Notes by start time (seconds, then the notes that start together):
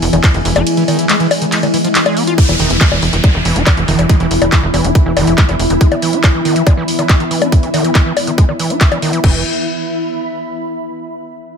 Already playing: E3 G#3 B3 E4 E5 G#5
0.02 E1, open hi-hat
0.13 E1 D#3, closed hi-hat, high bongo
0.24 G#3, kick, clap, closed hi-hat, ride
0.34 F1 D#3, closed hi-hat
0.45 E1 E3, open hi-hat
0.56 E1 E4, closed hi-hat, high bongo
0.67 closed hi-hat, ride
0.77 E3, closed hi-hat
0.88 D#3, open hi-hat, high bongo
0.99 E3, closed hi-hat
1.09 G#3, clap, closed hi-hat, ride
1.20 E3, closed hi-hat
1.31 open hi-hat, high bongo
1.42 D#3, closed hi-hat
1.52 G#3, clap, closed hi-hat, ride
1.63 D#3, closed hi-hat, high bongo
1.74 E3, open hi-hat
1.84 F3, closed hi-hat
1.95 clap, closed hi-hat, ride
2.06 G#3, closed hi-hat, high bongo
2.17 B3, open hi-hat
2.27 F4, closed hi-hat
2.38 E3 B3 E4, kick, closed hi-hat, downlifter
2.49 E1 E3, closed hi-hat, high bongo
2.53 E5
2.58 E1 D#3 B5, open hi-hat
2.63 E4
2.70 E1 E3, closed hi-hat
2.81 G#3, kick, clap, closed hi-hat
2.92 E1 E3, high bongo
3.02 E1, open hi-hat
3.13 E1 D#3, closed hi-hat
3.24 G#3, kick, closed hi-hat, high bongo
3.34 E1 D#3
3.45 E1 E3, open hi-hat
3.56 E1 E4, closed hi-hat
3.67 kick, clap, closed hi-hat, high bongo
3.77 F1 E3, closed hi-hat
3.88 E1 D#3, open hi-hat
3.99 E1 E3, closed hi-hat, high bongo
4.09 G#3, kick, closed hi-hat
4.20 E1 E3, closed hi-hat
4.31 E1, open hi-hat
4.42 E1 D#3, closed hi-hat, high bongo
4.52 G#3, kick, clap, closed hi-hat
4.63 E1 D#3
4.74 E1 E3, open hi-hat, high bongo
4.84 E1 E4, closed hi-hat
4.95 kick, closed hi-hat
5.06 E1 E3
5.17 E1 D#3, open hi-hat, high bongo
5.27 E1 E3, closed hi-hat
5.38 G#3, kick, clap, closed hi-hat
5.49 F1 E3, closed hi-hat, high bongo
5.59 E1, open hi-hat
5.70 E1 D#3, closed hi-hat
5.81 G#3, kick, closed hi-hat
5.92 D#3, closed hi-hat, high bongo
6.02 E3, open hi-hat
6.13 E4, closed hi-hat
6.24 kick, clap, closed hi-hat, high bongo
6.34 E3
6.45 D#3, open hi-hat
6.56 E3, closed hi-hat
6.67 G#3, kick, closed hi-hat, high bongo
6.77 E3
6.88 open hi-hat
6.99 D#3, closed hi-hat, high bongo
7.09 G#3, kick, clap, closed hi-hat
7.20 D#3, closed hi-hat
7.31 E3, open hi-hat
7.42 E4, closed hi-hat, high bongo
7.52 kick, closed hi-hat
7.63 E3, closed hi-hat
7.74 D#3, open hi-hat, high bongo
7.84 E3, closed hi-hat
7.95 G#3, kick, clap, closed hi-hat
8.06 E3
8.17 open hi-hat, high bongo
8.27 D#3, closed hi-hat
8.38 G#3, kick, closed hi-hat
8.49 D#3, high bongo
8.59 E3, open hi-hat
8.70 E4, closed hi-hat
8.81 kick, clap, closed hi-hat
8.92 E3, closed hi-hat, high bongo
9.02 D#3, open hi-hat
9.13 E3, closed hi-hat
9.24 E1 E3 B3, kick, crash
9.30 E4
9.36 E5
9.43 B5